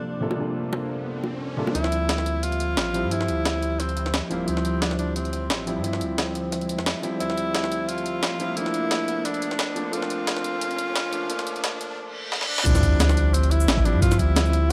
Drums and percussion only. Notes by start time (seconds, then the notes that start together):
0.31 high bongo
0.73 high bongo
1.24 high bongo
1.67 high bongo
1.75 closed hi-hat
1.84 snare
1.92 closed hi-hat
2.09 snare, closed hi-hat
2.18 snare
2.26 closed hi-hat
2.43 closed hi-hat
2.52 closed hi-hat
2.60 closed hi-hat
2.77 snare, closed hi-hat
2.94 closed hi-hat
3.11 closed hi-hat
3.21 snare
3.28 closed hi-hat
3.45 snare, closed hi-hat
3.63 closed hi-hat
3.80 snare, closed hi-hat
3.89 closed hi-hat
3.97 closed hi-hat
4.06 snare
4.14 snare, closed hi-hat
4.31 closed hi-hat
4.48 closed hi-hat
4.57 snare
4.65 closed hi-hat
4.82 snare, closed hi-hat
4.91 snare
4.99 closed hi-hat
5.16 closed hi-hat
5.25 closed hi-hat
5.33 closed hi-hat
5.50 snare, closed hi-hat
5.67 closed hi-hat
5.84 closed hi-hat
5.93 snare
6.01 closed hi-hat
6.18 snare, closed hi-hat
6.35 closed hi-hat
6.52 snare, closed hi-hat
6.61 closed hi-hat
6.69 closed hi-hat
6.79 snare
6.86 snare, closed hi-hat
7.03 closed hi-hat
7.20 closed hi-hat
7.30 snare
7.37 closed hi-hat
7.55 snare, closed hi-hat
7.64 snare
7.72 closed hi-hat
7.89 closed hi-hat
7.98 closed hi-hat
8.06 closed hi-hat
8.23 snare, closed hi-hat
8.40 closed hi-hat
8.57 closed hi-hat
8.66 snare
8.74 closed hi-hat
8.91 snare, closed hi-hat
9.08 closed hi-hat
9.25 snare, closed hi-hat
9.34 closed hi-hat
9.42 closed hi-hat
9.51 snare
9.59 snare, closed hi-hat
9.76 closed hi-hat
9.93 closed hi-hat
10.02 snare
10.10 closed hi-hat
10.27 snare, closed hi-hat
10.37 snare
10.44 closed hi-hat
10.61 closed hi-hat
10.71 closed hi-hat
10.78 closed hi-hat
10.96 snare, closed hi-hat
11.13 closed hi-hat
11.30 closed hi-hat
11.39 snare, closed hi-hat
11.47 closed hi-hat
11.56 closed hi-hat
11.64 snare, closed hi-hat
11.81 closed hi-hat
12.32 snare
12.41 snare
12.58 snare
12.66 kick, closed hi-hat, crash, cabasa
12.75 snare, cabasa
12.83 kick, closed hi-hat, cabasa
13.00 snare, closed hi-hat, cabasa
13.09 snare, cabasa
13.17 closed hi-hat
13.34 closed hi-hat, cabasa
13.43 closed hi-hat
13.51 closed hi-hat
13.60 cabasa
13.68 snare, closed hi-hat, cabasa
13.77 kick, snare
13.85 closed hi-hat
14.02 kick, closed hi-hat, cabasa
14.12 snare, cabasa
14.19 kick, closed hi-hat, cabasa
14.36 snare, closed hi-hat, cabasa
14.46 cabasa
14.53 closed hi-hat